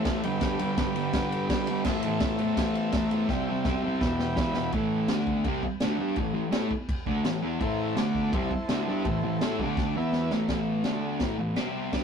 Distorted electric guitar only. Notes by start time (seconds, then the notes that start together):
0.06 A2 E3 A3
0.24 G2 D3 G3
0.42 G2 D3 G3
0.60 D3 G3
0.78 G2 D3 G3
0.96 D3 G3
1.13 G2 D3 G3
1.50 G2 D3 G3
1.67 D3 G3
1.86 A2 E3 A3
2.04 E3 A3
2.22 A2 E3 A3
2.40 E3 A3
2.59 A2 E3 A3
2.94 A2 E3 A3
3.12 E3 A3
3.30 C3 G3 C4
3.48 G3 C4
3.65 C3 G3 C4
3.83 G3 C4
4.01 E2 B2 E3
4.36 E2 B2 E3
4.55 B2 E3
4.73 A2 E3 A3
5.10 D3 A3 D4
5.45 C3 G3 C4
5.64 muted distorted electric guitar stroke
5.82 D3 A3 D4
5.99 G3 D4 G4
6.17 A2 E3
6.34 A2 E3
6.52 A3 E4 A4
6.71 muted distorted electric guitar stroke
7.07 D3 A3 D4
7.25 A2 E3
7.43 E3 B3 E4
7.60 A2 E3 A3
7.96 D3 A3 D4
8.33 C3 G3 C4
8.51 muted distorted electric guitar stroke
8.70 D3 A3 D4
8.88 G3 D4 G4
9.06 A2 E3
9.23 A2 E3
9.42 A3 E4 A4
9.60 D3 A3 D4
9.96 E3 B3 E4
10.32 A2 E3 A3
10.49 A2 E3 A3
10.85 D3 A3 D4
11.21 A2 E3 A3
11.38 A2 E3
11.56 C3 G3 C4
11.93 G3 D4 G4